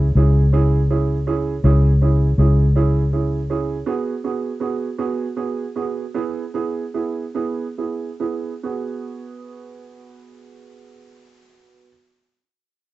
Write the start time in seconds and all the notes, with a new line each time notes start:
Already playing: C#2
0.15 C#2 C#4 E4 G#4
0.53 C#4 E4 G#4
0.90 C#4 E4 G#4
1.27 C#4 E4 G#4
1.64 C#2 C#4 E4 G#4
2.02 C#4 E4 G#4
2.38 C#2 C#4 E4 G#4
2.76 C#4 E4 G#4
3.13 C#4 E4 G#4
3.50 C#4 E4 G#4
3.86 B3 F#4 G#4
4.24 B3 F#4 G#4
4.60 B3 F#4 G#4
4.99 B3 F#4 G#4
5.37 B3 F#4 G#4
5.75 B3 F#4 G#4
6.14 B3 E4 G#4
6.54 B3 E4 G#4
6.94 B3 E4 G#4
7.34 B3 E4 G#4
7.78 B3 E4 G#4
8.20 B3 E4 G#4
8.63 B3 F#4 G#4